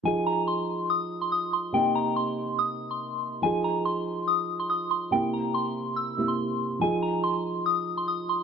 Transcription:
X:1
M:4/4
L:1/16
Q:1/4=142
K:Fm
V:1 name="Synth bell"
a2 b2 c'4 e'3 c' e'2 c'2 | g2 b2 c'4 e'3 c'4- c' | a2 b2 c'4 e'3 c' e'2 c'2 | g2 b2 c'4 =e'3 c'4- c' |
a2 b2 c'4 e'3 c' e'2 c'2 |]
V:2 name="Felt piano"
[F,EA]16 | [C,B,E]16 | [F,EA]16 | [C,B,=E]8- [C,B,E]2 [C,B,E]6 |
[F,EA]16 |]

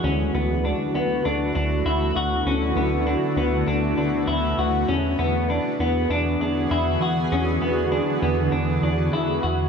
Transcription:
X:1
M:4/4
L:1/16
Q:1/4=99
K:Dlyd
V:1 name="Clean electric guitar"
C2 B,2 D2 B,2 D2 D2 E2 F2 | C2 B,2 D2 B,2 D2 D2 E2 F2 | C2 B,2 D2 B,2 D2 D2 E2 F2 | C2 B,2 D2 B,2 D2 D2 E2 F2 |]
V:2 name="Ambient pad"
[D,A,B,EF]16- | [D,A,B,EF]16 | [D,E,FG]16- | [D,E,FG]16 |]
V:3 name="Analog synth bass" clef=bass
D,,2 D,,3 z D,,2 D,,2 D,,2 D,,2 D,,2 | D,,2 D,,3 z D,,2 D,,2 D,,2 D,,2 D,,2 | E,,2 E,,3 z E,,2 E,,2 E,,2 E,,2 E,,2 | E,,2 E,,3 z E,,2 E,,2 E,,2 E,,2 E,,2 |]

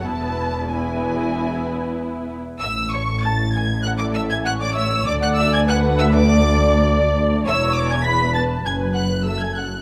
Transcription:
X:1
M:4/4
L:1/16
Q:1/4=98
K:A
V:1 name="Violin section"
a4 g8- g2 z2 | e'2 c'2 a'2 g'2 f' d' e' g' f' d' e'2 | d' f' e' g' f'2 e' d'6- d' z2 | e'2 d' g' b'2 a'2 g'2 f'2 e' g' f'2 |]
V:2 name="Violin section"
[EB]4 [EB]8- [EB]2 z2 | e2 c2 a2 g2 f d e g f d e2 | d f e g f2 e d6- d z2 | e2 d g b2 a2 g2 f2 e g f2 |]
V:3 name="Viola section"
[B,E]4 [B,E]8- [B,E]2 z2 | z8 A4 c4 | d4 B4 d8 | c4 B4 B4 A4 |]
V:4 name="Cello section" clef=bass
E,,12- E,,2 z2 | A,,16 | D,,16 | E,,8 F,,8 |]
V:5 name="Double bass section" clef=bass
E,,,12- E,,,2 z2 | A,,,16 | D,,16 | E,,,8 F,,,8 |]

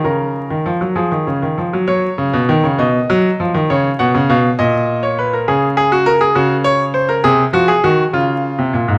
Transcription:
X:1
M:6/8
L:1/16
Q:3/8=67
K:F#
V:1 name="Grand piano"
A6 G6 | c6 d6 | c2 f2 e2 d3 c B A | G2 G F A G F2 c2 ^B A |
G2 F G F2 E6 |]
V:2 name="Grand piano" clef=bass
C,3 D, E, F, E, D, C, D, E, F, | F,2 C, B,, D, C, B,,2 F,2 E, D, | C,2 B,, C, B,,2 A,,6 | C,6 C,6 |
^B,,2 E,2 D,2 C,3 B,, A,, G,, |]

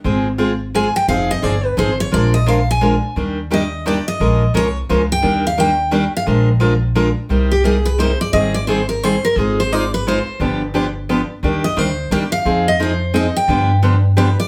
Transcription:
X:1
M:3/4
L:1/16
Q:"Swing" 1/4=174
K:Bbmix
V:1 name="Steel-string acoustic guitar"
z8 a2 g2 | f2 e2 d2 _c2 =c2 _d2 | d2 e2 f2 a6 | z4 e4 d2 e2- |
e4 _d2 z4 g2- | g2 f2 g6 f2 | z12 | [K:Cm] z2 G2 A2 =B2 c2 d2 |
e2 d2 c2 B2 c2 B2 | A2 c2 d2 =B2 c4 | z12 | z2 e2 c4 d2 f2- |
f2 e2 c4 e2 g2- | g4 z4 =B2 d2 |]
V:2 name="Steel-string acoustic guitar"
[A,CFA]2 z2 [A,CFA] z3 [A,CFA] z3 | [F,CEA]2 z2 [F,CEA] z3 [F,CEA] z3 | [F,A,DFB]2 z2 [F,A,DFB] z3 [F,A,DFB] z3 | [E,G,B,DG]2 z2 [E,G,B,DG] z3 [E,G,B,DG] z3 |
[F,A,_DFB]2 z2 [F,A,DFB] z3 [F,A,DFB] z3 | [E,G,B,DG]2 z2 [E,G,B,DG] z3 [E,G,B,DG] z3 | [F,A,DFB]2 z2 [F,A,DFB] z3 [F,A,DFB] z3 | [K:Cm] [C,G,B,EG]2 z2 [C,G,B,EG] z3 [C,G,B,EG] z3 |
[E,G,CEA]2 z2 [E,G,CEA] z3 [E,G,CEA] z3 | [A,EFc]2 z2 [A,EFc] z3 [A,EFc] z3 | [D,F,=B,DG]2 z2 [D,F,B,DG] z3 [D,F,B,DG] z3 | [E,G,B,DG]2 z2 [E,G,B,DG] z3 [E,G,B,DG] z3 |
[F,CEA]2 z2 [F,CEA] z3 [F,CEA] z3 | [D,F,=B,DG]2 z2 [D,F,B,DG] z3 [D,F,B,DG] z3 |]
V:3 name="Upright bass" clef=bass
A,,,12 | F,,,4 G,,,4 A,,,4 | B,,,12 | E,,12 |
B,,,4 C,,4 _D,,4 | E,,12 | B,,,12 | [K:Cm] C,,12 |
A,,,12 | A,,,12 | G,,,12 | E,,4 D,,4 E,,4 |
F,,12 | G,,12 |]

